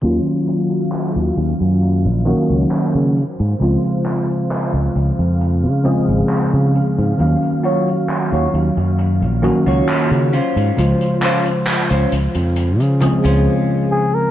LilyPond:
<<
  \new Staff \with { instrumentName = "Analog synth pad" } { \time 4/4 \key ees \dorian \tempo 4 = 67 << { f''2.~ f''8 f''8~ | f''1~ | f''1~ | f''2. r4 | } \\ { ges2.~ ges8 c''8~ | c''1 | ges2.~ ges8 c''8~ | c''2. r4 | } >> }
  \new Staff \with { instrumentName = "Flugelhorn" } { \time 4/4 \key ees \dorian r1 | r1 | r1 | r2. r8 aes'16 bes'16 | }
  \new Staff \with { instrumentName = "Clean electric guitar" } { \time 4/4 \key ees \dorian r1 | r1 | r8 <f' ges' des''>16 r8 <f' ges' des''>16 r4 r16 <f' ges' des''>8. <des' f' c''>8~ | <des' f' c''>16 r16 <des' f' c''>16 r8 <des' f' c''>16 r4 r16 <des' f' c''>8. r8 | }
  \new Staff \with { instrumentName = "Tine electric piano" } { \time 4/4 \key ees \dorian <ees ges bes des' f'>2~ <ees ges bes des' f'>8 <ees ges bes des' ges'>8 r4 | <des f aes c' f'>2~ <des f aes c' f'>8 <des f aes c' aes'>8 r4 | <ees ges bes des' f''>2~ <ees ges bes des' f''>8 <ees ges bes des' ges'>8 r4 | <des f aes f' c''>2~ <des f aes f' c''>8 <des f aes c' aes'>8 r4 | }
  \new Staff \with { instrumentName = "Fingered electric bass" } { \clef bass \time 4/4 \key ees \dorian ees,16 r4 ees,16 ees,16 ges,8 bes,,16 r16 des,16 r16 des16 r16 aes,16 | des,16 r4 des,16 des,16 f,8 des16 r16 aes,,16 r16 des16 r16 aes,16 | ees,16 r4 ees,16 ees,16 ges,8 bes,,16 r16 des,16 r16 des16 r16 aes,16 | des,16 r4 des,16 des,16 f,8 des16 r16 des,16 r4 | }
  \new DrumStaff \with { instrumentName = "Drums" } \drummode { \time 4/4 hh16 hh16 hh16 hh16 <hc hh>16 hh16 hh16 hh16 hh16 hh16 hh16 hh16 <hc hh>16 hh16 hh16 hh16 | hh16 hh16 <hc hh>16 hh16 <hc hh>16 hh16 hh16 hh16 hh16 hh16 hh16 hh16 <hc hh>16 hh16 hh16 hh16 | hh16 hh16 hh16 hh16 <hc hh>16 hh16 hh16 hh16 hh16 hh16 hh16 hh16 <hc hh>16 hh16 hh16 hh16 | hh16 hh16 <hc hh>16 hh16 <hc hh>16 hh16 hh16 hh16 hh16 hh16 hh16 hh16 r4 | }
>>